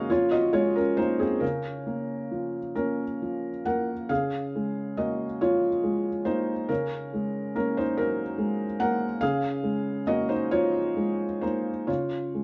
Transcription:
0.00 1.36 C#3 medium
0.00 0.12 G#3 medium
0.00 0.35 A#3 medium
0.00 0.12 F#4 medium
0.00 0.12 G#4 medium
0.00 0.12 A#4 medium
0.00 0.12 D#5 medium
0.00 0.12 F5 loud
0.00 0.12 F#5 medium
0.10 0.79 F3 medium
0.10 0.30 F4 medium
0.10 0.31 C#5 medium
0.31 0.52 F#4 medium
0.31 0.53 D#5 medium
0.53 1.23 G#3 soft
0.53 0.74 F4 medium
0.53 0.75 C#5 medium
0.76 0.97 C#4 medium
0.76 0.97 A#4 medium
0.97 1.42 A#3 medium
0.97 1.18 D#4 medium
0.97 1.19 C5 medium
1.19 1.41 C4 medium
1.19 1.41 G#4 medium
1.40 4.06 C#3 medium
1.40 2.71 C#4 medium
1.40 2.74 A#4 medium
1.86 2.57 A#3 soft
2.31 3.03 F3 soft
2.75 3.48 A#3 soft
2.75 3.62 C#4 medium
2.75 3.65 A#4 medium
3.22 3.93 F3 soft
3.66 4.10 A#3 soft
3.66 4.08 A#4 medium
3.66 4.10 F#5 medium
4.09 6.65 C#3 medium
4.09 4.94 G#4 medium
4.09 4.97 F5 medium
4.55 5.24 G#3 soft
4.97 5.66 A#3 soft
4.97 5.38 F#4 medium
4.97 5.40 D#5 medium
5.41 6.09 F3 soft
5.41 6.22 F4 medium
5.41 6.26 C#5 medium
5.84 6.52 G#3 soft
6.25 6.69 A#3 soft
6.25 6.66 D#4 medium
6.25 6.69 C5 medium
6.69 9.17 C#3 soft
6.69 7.52 C#4 medium
6.69 7.54 A#4 medium
7.14 7.81 G#3 soft
7.55 8.22 A#3 soft
7.55 7.75 C#4 medium
7.55 7.77 A#4 medium
7.77 7.97 D#4 medium
7.77 7.98 C5 medium
7.97 8.63 F#3 soft
7.97 8.76 C#4 medium
7.97 8.80 A#4 medium
8.38 9.04 G#3 soft
8.80 9.21 A#3 medium
8.80 9.19 A#4 medium
8.80 9.21 F#5 medium
9.21 11.84 C#3 medium
9.21 10.03 G#4 medium
9.21 10.06 F5 medium
9.63 10.32 G#3 soft
10.07 10.77 A#3 soft
10.07 10.27 F#4 medium
10.07 10.28 D#5 medium
10.29 10.49 D#4 medium
10.29 10.50 C5 medium
10.51 11.23 F3 soft
10.51 11.38 F4 medium
10.51 11.42 C#5 medium
10.97 11.70 G#3 soft
11.41 11.88 A#3 soft
11.41 11.85 D#4 medium
11.41 11.88 C5 medium
11.87 12.44 C#3 soft
11.87 12.44 F4 soft
11.87 12.44 C#5 medium
12.35 12.44 G#3 soft

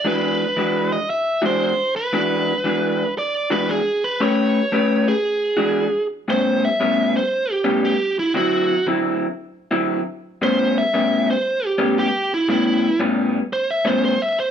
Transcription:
0.05 0.44 E3 medium
0.05 0.44 G#3 medium
0.05 0.44 D4 medium
0.05 0.44 F#4 medium
0.05 0.94 B4 medium
0.57 0.96 E3 medium
0.57 0.96 G#3 medium
0.57 0.96 D4 medium
0.57 0.96 F#4 medium
0.92 1.10 D#5 medium
1.10 1.42 E5 medium
1.42 1.72 E3 medium
1.42 1.71 G#3 medium
1.42 1.71 D4 medium
1.42 1.71 F#4 medium
1.42 1.96 C5 medium
1.96 3.14 B4 medium
2.13 2.52 E3 medium
2.13 2.52 G#3 medium
2.13 2.52 D4 medium
2.13 2.52 F#4 medium
2.64 3.03 E3 medium
2.64 3.04 G#3 medium
2.64 3.04 D4 medium
2.64 3.04 F#4 medium
3.18 3.48 D5 medium
3.50 3.79 E3 medium
3.50 3.79 G#3 medium
3.50 3.79 D4 medium
3.50 3.79 F#4 medium
3.50 3.70 B4 medium
3.70 4.03 G#4 medium
4.04 4.22 B4 medium
4.20 4.59 A3 medium
4.20 4.59 C#4 medium
4.20 4.60 G4 medium
4.20 4.60 B4 medium
4.20 5.09 C#5 medium
4.72 5.11 A3 medium
4.72 5.11 C#4 medium
4.72 5.11 G4 medium
4.72 5.12 B4 medium
5.08 6.06 G#4 medium
5.57 5.87 E3 medium
5.57 5.86 G#3 medium
5.57 5.86 D4 medium
5.57 5.86 F#4 medium
6.28 6.67 A2 medium
6.28 6.67 G3 medium
6.28 6.67 B3 medium
6.28 6.67 C#4 medium
6.28 6.63 C5 medium
6.65 7.14 E5 medium
6.80 7.18 A2 medium
6.80 7.19 G3 medium
6.80 7.19 B3 medium
6.80 7.19 C#4 medium
7.17 7.51 C5 medium
7.51 7.84 G4 medium
7.64 7.94 A2 medium
7.64 7.94 G3 medium
7.64 7.93 B3 medium
7.64 7.93 C#4 medium
7.85 8.18 G4 medium
8.19 8.35 E4 medium
8.34 8.73 D3 medium
8.34 8.73 F#3 medium
8.34 8.74 C4 medium
8.34 8.74 E4 medium
8.34 8.86 F#4 medium
8.87 9.25 D3 medium
8.87 9.25 F#3 medium
8.87 9.26 C4 medium
8.87 9.26 E4 loud
9.71 10.01 D3 medium
9.71 10.00 F#3 medium
9.71 10.00 C4 medium
9.71 10.00 E4 medium
10.42 10.80 A2 medium
10.42 10.81 G3 medium
10.42 10.81 B3 medium
10.42 10.81 C#4 medium
10.42 10.76 C5 medium
10.78 11.27 E5 loud
10.94 11.32 A2 medium
10.94 11.33 G3 medium
10.94 11.33 B3 medium
10.94 11.33 C#4 medium
11.31 11.65 C5 medium
11.65 11.98 G4 medium
11.78 12.08 A2 medium
11.78 12.08 G3 medium
11.78 12.07 B3 medium
11.78 12.07 C#4 medium
11.99 12.32 G4 medium
12.34 12.49 E4 medium
12.48 12.87 A2 medium
12.48 12.87 G3 medium
12.48 12.88 B3 medium
12.48 12.88 C#4 medium
12.48 13.00 E4 medium
13.00 13.39 A2 loud
13.00 13.39 G3 medium
13.00 13.39 B3 loud
13.00 13.39 C#4 loud
13.53 13.69 C5 medium
13.70 13.87 E5 loud
13.85 14.14 A2 medium
13.85 14.14 G3 medium
13.85 14.14 B3 medium
13.85 14.14 C#4 medium
13.85 14.04 C5 medium
14.05 14.21 C5 medium
14.22 14.38 E5 medium
14.40 14.51 C5 medium

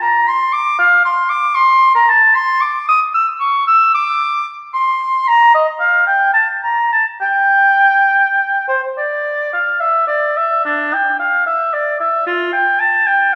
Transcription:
0.01 0.29 A#5 medium
0.28 0.54 C6 medium
0.53 0.78 D6 medium
0.79 1.04 F5 loud
1.05 1.31 C6 medium
1.30 1.57 D6 loud
1.55 1.95 C6 medium
1.95 2.10 A#5 medium
2.09 2.36 A5 medium
2.35 2.63 C6 loud
2.61 2.88 D6 medium
2.89 3.00 D#6 loud
3.14 3.26 E6 medium
3.41 3.67 C#6 medium
3.67 3.94 E6 medium
3.95 4.46 D6 loud
4.74 5.29 C6 medium
5.28 5.54 A#5 medium
5.55 5.67 D#5 medium
5.80 6.07 F5 medium
6.07 6.33 G5 medium
6.34 6.47 A5 medium
6.63 6.92 A#5 medium
6.93 7.06 A5 medium
7.22 8.65 G5 medium
8.68 8.81 C5 medium
8.98 9.52 D5 medium
9.53 9.82 F5 medium
9.80 10.07 E5 medium
10.07 10.38 D5 medium
10.37 10.65 E5 medium
10.65 10.95 D4 medium
10.94 11.19 G5 medium
11.19 11.46 F5 medium
11.47 11.75 E5 medium
11.73 12.00 D5 medium
12.00 12.26 E5 medium
12.27 12.52 F4 medium
12.53 12.81 G5 medium
12.80 13.08 A5 medium
13.07 13.35 G5 medium

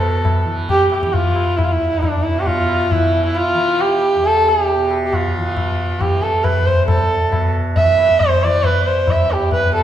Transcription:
0.00 1.68 E2 medium
0.00 2.28 B2 soft
0.00 0.45 E3 medium
0.00 0.47 A4 medium
0.25 tabla na medium
0.25 tabla ge medium
0.45 1.05 E3 medium
0.69 0.90 G4 medium
0.69 tabla tin medium
0.69 tabla ge medium
0.92 1.15 G4 medium
0.92 tabla na soft
1.03 2.91 E3 soft
1.03 tabla ke medium
1.13 1.58 F4 medium
1.13 tabla tin medium
1.13 tabla ge medium
1.36 tabla na medium
1.57 1.66 E4 medium
1.57 tabla na medium
1.57 tabla ge medium
1.64 4.14 E2 soft
1.64 1.73 F4 medium
1.72 2.02 E4 medium
2.01 2.24 D4 medium
2.01 tabla na medium
2.01 tabla ge medium
2.23 2.41 E4 medium
2.28 4.76 B2 medium
2.40 2.48 G4 medium
2.46 2.93 F4 medium
2.46 tabla tin medium
2.46 tabla ge medium
2.69 tabla na medium
2.91 3.54 E3 medium
2.91 3.25 E4 medium
2.91 tabla tin medium
2.91 tabla ge medium
3.13 tabla na medium
3.26 3.38 E4 medium
3.35 3.82 F4 medium
3.35 tabla na medium
3.54 5.37 E3 medium
3.54 tabla na medium
3.79 4.27 G4 medium
3.79 tabla na medium
4.02 tabla na medium
4.15 6.58 E2 soft
4.24 4.50 A4 loud
4.24 tabla tin medium
4.46 4.64 G#4 medium
4.46 tabla na medium
4.64 4.92 G4 medium
4.68 tabla tin medium
4.76 7.19 B2 medium
4.91 tabla na medium
5.06 5.15 G4 medium
5.13 6.02 F4 medium
5.13 tabla na medium
5.13 tabla ge medium
5.37 5.97 E3 soft
5.57 tabla na medium
5.57 tabla ge medium
5.97 7.84 E3 soft
5.97 6.24 G4 medium
5.97 tabla na medium
5.97 tabla ge medium
6.22 6.45 A4 medium
6.22 tabla te soft
6.44 6.68 B4 medium
6.44 tabla na medium
6.44 tabla ge medium
6.58 9.06 E2 soft
6.66 6.87 C5 medium
6.66 tabla ge soft
6.87 7.50 A4 medium
6.87 tabla na medium
6.87 tabla ge medium
7.20 9.65 B2 soft
7.32 tabla na medium
7.32 tabla ge medium
7.76 8.21 E5 loud
7.76 tabla tin medium
7.76 tabla ge medium
7.84 8.43 E3 soft
7.98 tabla na soft
8.09 tabla ke medium
8.20 8.45 C5 medium
8.20 tabla tin medium
8.20 tabla ge medium
8.42 9.83 E3 medium
8.42 8.67 D5 medium
8.42 tabla na medium
8.64 8.88 B4 medium
8.64 tabla na medium
8.64 tabla ge medium
8.87 9.12 C5 medium
9.06 9.83 E2 medium
9.06 tabla na medium
9.06 tabla ge medium
9.10 9.33 E5 medium
9.29 9.53 G4 medium
9.29 tabla te medium
9.51 9.73 B4 medium
9.51 tabla tin medium
9.51 tabla ge medium
9.66 9.83 B2 medium
9.73 9.83 A4 medium
9.73 tabla na soft

